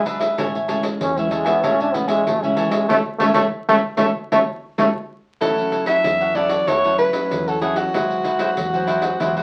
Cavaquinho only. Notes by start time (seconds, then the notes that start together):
0.05 D4 G#4 B4 E5
0.20 G#4 B4 E5
0.38 A4 C#5 E5 G#5
0.55 C#5 E5 G#5
0.68 A4 C#5 E5 G#5
0.83 muted cavaquinho stroke
1.17 C#5 E5 G#5
1.31 A4 C#5 E5 G#5
1.45 C#5 E5 G#5
1.63 A4 C#5 E5 G#5
1.80 C#5 E5 G#5
1.94 muted cavaquinho stroke
2.08 C#5 E5 G#5
2.43 C#5 E5 G#5
2.56 A4 C#5 E5 G#5
2.71 C#5 E5 G#5
2.89 A4 C#5 E5
3.20 A4 C#5 E5
3.34 A4 C#5 E5
3.69 A4 C#5 E5
3.97 A4 C#5 E5
4.32 A4 C#5 E5
4.78 A4 C#5 E5
5.41 E4 A4 C#5 F#5
5.71 E4 A4 C#5 F#5
5.87 E4 A4 C#5 F#5
6.21 A4 C#5 F#5
6.35 E4 A4 C#5 F#5
6.49 A4 C#5 F#5
6.67 E4 A4 C#5 F#5
6.84 E4 A4 C#5 F#5
6.98 E4 A4 C#5 F#5
7.48 A4 C#5 F#5
7.61 E4 A4 C#5 F#5
7.76 A4 C#5 F#5
7.94 E4 G#4 C5 F#5
8.24 E4 G#4 C5 F#5
8.39 E4 G#4 C5 F#5
8.74 G#4 C5 F#5
8.87 E4 G#4 C5 F#5
9.02 G#4 C5 F#5
9.20 E4 G#4 C5 F#5
9.36 E4 G#4 C5 F#5